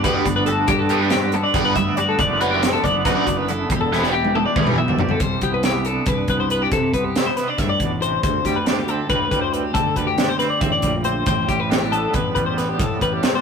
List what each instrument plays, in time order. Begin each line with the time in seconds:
Already playing: clean electric guitar G2 D3 D4 F#4
0.04 fingered electric bass D2, overdriven electric guitar G3 B3 D4 G4, clean electric guitar B3 B4, kick, closed hi-hat
0.15 clean electric guitar D5
0.25 fingered electric bass G1, clean electric guitar D2 D4, muted overdriven electric guitar stroke, kick, closed hi-hat
0.36 clean electric guitar B4
0.46 clean electric guitar A4, muted overdriven electric guitar stroke, closed hi-hat
0.51 clean electric guitar F#4
0.68 fingered electric bass G2, clean electric guitar G2 F#4 G4, muted overdriven electric guitar stroke, kick, closed hi-hat
0.79 clean electric guitar A4
0.89 overdriven electric guitar G3 B3 D4 G4, clean electric guitar B3, closed hi-hat
1.00 clean electric guitar D4 B4
1.10 clean electric guitar D3 F#4 G4, muted overdriven electric guitar stroke, snare, closed hi-hat
1.32 clean electric guitar B3 A4, muted overdriven electric guitar stroke, closed hi-hat
1.44 clean electric guitar D4 D5
1.54 fingered electric bass G1, overdriven electric guitar G3 B3 D4 G4, clean electric guitar B3, kick, snare, closed hi-hat
1.65 clean electric guitar B4
1.75 clean electric guitar D2 B3 E5, fingered electric bass G2, muted overdriven electric guitar stroke, kick, closed hi-hat
1.88 clean electric guitar D4
1.97 clean electric guitar F#4 D5, muted overdriven electric guitar stroke, closed hi-hat
2.09 clean electric guitar A4
2.18 fingered electric bass F#1, clean electric guitar F#2 D3 A3 B3 D4 D5, muted overdriven electric guitar stroke, kick, closed hi-hat
2.41 overdriven electric guitar F#3 B3 D4 F#4, clean electric guitar B3 B4, closed hi-hat
2.51 clean electric guitar G4
2.62 clean electric guitar D3 D4, muted overdriven electric guitar stroke, snare, closed hi-hat
2.73 clean electric guitar A4
2.83 fingered electric bass F#1, clean electric guitar B3 D5, muted overdriven electric guitar stroke, kick, closed hi-hat
3.05 fingered electric bass F#2, overdriven electric guitar F#3 B3 D4 F#4, clean electric guitar A3 B4, kick, snare, closed hi-hat
3.17 clean electric guitar D5
3.26 fingered electric bass F#1, clean electric guitar F#2 B3, muted overdriven electric guitar stroke, kick, closed hi-hat
3.37 clean electric guitar B4
3.48 clean electric guitar E4 A4, muted overdriven electric guitar stroke, closed hi-hat
3.69 fingered electric bass E1, clean electric guitar E2 E4 G4, muted overdriven electric guitar stroke, kick, closed hi-hat
3.81 clean electric guitar A4
3.92 overdriven electric guitar E3 B3 E4 G4, clean electric guitar B3, snare
4.03 clean electric guitar D4 B4, snare
4.13 clean electric guitar E3 G4, muted overdriven electric guitar stroke
4.25 high tom
4.35 clean electric guitar B3 A4, muted overdriven electric guitar stroke, high tom
4.45 clean electric guitar D4 D5
4.56 fingered electric bass E1, overdriven electric guitar E3 B3 E4 G4, clean electric guitar G3, kick, mid tom
4.67 clean electric guitar B4, mid tom
4.76 fingered electric bass B1, clean electric guitar B2 B3 E5, muted overdriven electric guitar stroke
4.88 clean electric guitar D4, floor tom
4.99 clean electric guitar G4 D5, muted overdriven electric guitar stroke, floor tom
5.09 clean electric guitar A4, floor tom
5.20 fingered electric bass C2, clean electric guitar C3 C5, kick, closed hi-hat
5.41 fingered electric bass C2, clean electric guitar B3 G4, kick, closed hi-hat
5.54 clean electric guitar B4
5.63 clean electric guitar E4 G4, snare, closed hi-hat
5.85 clean electric guitar D4 A4, closed hi-hat
6.06 fingered electric bass C2, clean electric guitar G2 B4, kick, closed hi-hat
6.28 fingered electric bass C2, clean electric guitar B3 B4, kick, closed hi-hat
6.40 clean electric guitar C5
6.50 clean electric guitar B3 B4, closed hi-hat
6.62 clean electric guitar D4 G4
6.71 fingered electric bass C3, clean electric guitar C3 A4, kick, closed hi-hat
6.93 fingered electric bass C2, clean electric guitar B3 B4, kick, closed hi-hat
7.04 clean electric guitar G4
7.16 clean electric guitar E4, snare, closed hi-hat
7.26 clean electric guitar C5
7.37 clean electric guitar B3 B4, snare, closed hi-hat
7.48 clean electric guitar D4 D5
7.58 fingered electric bass G2, clean electric guitar A2 E5, kick, snare, closed hi-hat
7.69 clean electric guitar D5
7.79 fingered electric bass A1, clean electric guitar B2, kick, closed hi-hat
8.02 clean electric guitar C3 C5, closed hi-hat
8.23 fingered electric bass D2, clean electric guitar D2 C5, kick, closed hi-hat
8.44 fingered electric bass D2, clean electric guitar G3 G4, kick, snare, closed hi-hat
8.56 clean electric guitar B4
8.66 clean electric guitar D4 G4, snare, closed hi-hat
8.79 clean electric guitar E4
8.88 clean electric guitar C4 A4, closed hi-hat
9.09 fingered electric bass D2, clean electric guitar A2 B4, kick, closed hi-hat
9.31 fingered electric bass D2, clean electric guitar G3 B4, kick, closed hi-hat
9.41 clean electric guitar C5
9.53 clean electric guitar C4 B4, closed hi-hat
9.63 clean electric guitar G4
9.74 clean electric guitar D2 A4, fingered electric bass D3, kick, closed hi-hat
9.96 fingered electric bass D2, clean electric guitar G3 B4, kick, closed hi-hat
10.07 clean electric guitar G4
10.18 clean electric guitar D4, snare, closed hi-hat
10.29 clean electric guitar E4 C5
10.39 clean electric guitar C4 B4, snare, closed hi-hat
10.50 clean electric guitar D5
10.61 fingered electric bass A1, clean electric guitar A2 E5, kick, closed hi-hat
10.72 clean electric guitar D5
10.82 fingered electric bass A#1, clean electric guitar G3, kick, closed hi-hat
11.04 clean electric guitar C4 C5, closed hi-hat
11.26 fingered electric bass A1, clean electric guitar A2 C5, kick, closed hi-hat
11.48 fingered electric bass A1, clean electric guitar G3 G4, kick, closed hi-hat
11.60 clean electric guitar B4
11.70 clean electric guitar D4 G4, snare, closed hi-hat
11.91 clean electric guitar B3 A4, closed hi-hat
12.13 fingered electric bass A1, clean electric guitar E2 B4, kick, closed hi-hat
12.35 fingered electric bass A1, clean electric guitar G3 B4, kick, closed hi-hat
12.46 clean electric guitar C5
12.57 clean electric guitar B3 B4, snare, closed hi-hat
12.69 clean electric guitar G4
12.78 clean electric guitar A2 A4, fingered electric bass A2, kick, closed hi-hat
13.01 fingered electric bass A1, clean electric guitar G3 B4, kick, closed hi-hat
13.13 clean electric guitar G4
13.23 clean electric guitar D4, snare, closed hi-hat
13.35 clean electric guitar C5